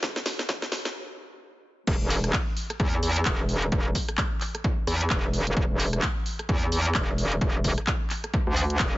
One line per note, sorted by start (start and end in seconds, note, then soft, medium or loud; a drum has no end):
0.03 kick loud
0.03 snare loud
0.03 closed hi-hat medium
0.16 snare medium
0.26 snare loud
0.26 open hi-hat loud
0.39 snare medium
0.39 closed hi-hat medium
0.49 kick loud
0.49 snare loud
0.49 closed hi-hat medium
0.62 snare medium
0.72 snare loud
0.72 open hi-hat medium
0.85 snare medium
0.85 closed hi-hat medium
1.87 1.99 E1 medium
1.87 kick loud
1.87 closed hi-hat medium
1.87 crash loud
2.01 2.32 E1 medium
2.10 open hi-hat loud
2.24 cross-stick medium
2.24 closed hi-hat medium
2.33 kick loud
2.33 clap loud
2.33 closed hi-hat medium
2.57 open hi-hat loud
2.70 cross-stick medium
2.70 closed hi-hat medium
2.80 3.01 E2 medium
2.80 kick loud
2.80 closed hi-hat medium
3.03 3.24 E2 loud
3.03 open hi-hat loud
3.16 closed hi-hat medium
3.25 3.71 E1 medium
3.25 kick loud
3.25 clap loud
3.25 closed hi-hat medium
3.49 open hi-hat medium
3.62 closed hi-hat medium
3.72 3.94 E1 loud
3.72 kick loud
3.72 closed hi-hat medium
3.95 kick medium
3.95 open hi-hat loud
4.09 cross-stick medium
4.09 closed hi-hat medium
4.18 kick loud
4.18 clap loud
4.18 closed hi-hat medium
4.41 clap soft
4.41 open hi-hat loud
4.55 cross-stick medium
4.55 closed hi-hat medium
4.64 kick loud
4.64 closed hi-hat medium
4.87 5.09 E2 loud
4.87 open hi-hat loud
5.01 closed hi-hat medium
5.10 5.45 E1 medium
5.10 kick loud
5.10 clap loud
5.10 closed hi-hat medium
5.34 open hi-hat loud
5.47 5.55 E1 loud
5.47 closed hi-hat medium
5.57 5.68 E1 loud
5.57 kick loud
5.57 closed hi-hat medium
5.70 6.01 E1 medium
5.80 open hi-hat loud
5.93 cross-stick medium
5.93 closed hi-hat medium
6.02 kick loud
6.02 clap loud
6.02 closed hi-hat medium
6.26 open hi-hat medium
6.39 cross-stick medium
6.39 closed hi-hat medium
6.49 6.70 E2 loud
6.49 kick loud
6.49 closed hi-hat medium
6.72 6.94 E2 loud
6.72 open hi-hat loud
6.85 closed hi-hat medium
6.95 7.40 E1 medium
6.95 kick loud
6.95 clap loud
6.95 closed hi-hat medium
7.18 open hi-hat loud
7.32 closed hi-hat medium
7.41 7.63 E1 loud
7.41 kick loud
7.41 closed hi-hat medium
7.64 7.76 E1 loud
7.64 kick medium
7.64 open hi-hat loud
7.78 cross-stick medium
7.78 closed hi-hat medium
7.87 kick loud
7.87 clap loud
7.87 closed hi-hat soft
8.10 clap soft
8.10 open hi-hat medium
8.24 cross-stick medium
8.24 closed hi-hat medium
8.34 kick loud
8.34 closed hi-hat soft
8.47 8.78 D2 medium
8.57 open hi-hat loud
8.70 closed hi-hat medium
8.79 8.98 E1 loud
8.79 kick loud
8.79 clap loud
8.79 closed hi-hat soft